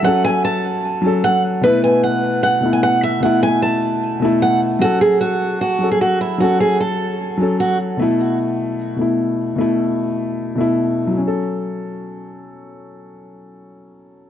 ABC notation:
X:1
M:4/4
L:1/16
Q:1/4=151
K:F#m
V:1 name="Steel-string acoustic guitar"
f2 g2 a8 f2 z2 | B2 g2 f4 f3 g f2 e2 | f2 g2 a8 f2 z2 | F2 G2 F4 F3 G F2 E2 |
F2 G2 A8 F2 z2 | z16 | z16 | z16 |
z16 |]
V:2 name="Grand piano"
[F,CA]6 z4 [F,CA]4 z2 | [B,,A,E]6 z4 [B,,A,E]4 z2 | [B,,A,E]6 z4 [B,,A,E]4 z2 | [F,CA]6 z4 [F,CA]4 z2 |
[F,CA]6 z4 [F,CA]4 z2 | [B,,A,E]6 z4 [B,,A,E]4 z2 | [B,,A,E]6 z4 [B,,A,E]4 z2 | [F,CA]16- |
[F,CA]16 |]